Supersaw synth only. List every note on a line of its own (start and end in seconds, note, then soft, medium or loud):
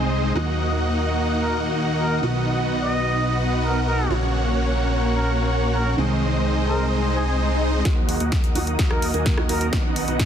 0.00 0.33 G#3 medium
0.00 0.33 C4 medium
0.00 0.33 D#4 medium
0.00 0.33 C5 medium
0.00 0.33 D#5 medium
0.35 2.20 A#3 medium
0.35 2.20 D#4 medium
0.35 2.20 F#4 medium
0.35 2.20 D#5 medium
0.35 2.20 F#5 medium
2.23 4.07 B3 medium
2.23 4.07 D#4 medium
2.23 4.07 F#4 medium
2.23 4.07 D#5 medium
2.23 4.07 F#5 medium
4.10 5.95 A#3 medium
4.10 5.95 C#4 medium
4.10 5.95 F#4 medium
4.10 5.95 C#5 medium
4.10 5.95 F#5 medium
5.98 7.83 G#3 medium
5.98 7.83 C4 medium
5.98 7.82 D#4 medium
5.98 7.83 C5 medium
5.98 7.83 D#5 medium
7.85 8.18 A#3 medium
7.85 8.18 D#4 medium
7.85 8.18 F#4 medium
7.85 8.18 D#5 medium
7.85 8.18 F#5 medium
8.20 8.34 A#3 medium
8.20 8.34 D#4 medium
8.20 8.34 F#4 medium
8.20 8.34 D#5 medium
8.20 8.34 F#5 medium
8.55 8.76 A#3 medium
8.55 8.76 D#4 medium
8.55 8.76 F#4 medium
8.55 8.75 D#5 medium
8.55 8.76 F#5 loud
8.79 9.11 A#3 medium
8.79 9.11 D#4 medium
8.79 9.11 F#4 medium
8.79 9.11 D#5 medium
8.79 9.11 F#5 medium
9.14 9.28 A#3 loud
9.14 9.28 D#4 medium
9.14 9.28 F#4 medium
9.14 9.28 D#5 medium
9.14 9.28 G#5 loud
9.49 9.70 A#3 medium
9.49 9.70 D#4 medium
9.49 9.70 F#4 medium
9.49 9.70 D#5 medium
9.49 9.70 A#5 medium
9.73 10.05 B3 medium
9.73 10.05 D#4 medium
9.73 10.05 F#4 medium
9.73 10.05 D#5 medium
9.73 10.05 F#5 medium
10.08 10.22 B3 medium
10.08 10.22 D#4 medium
10.08 10.22 F#4 medium
10.08 10.22 D#5 medium
10.08 10.22 F#5 loud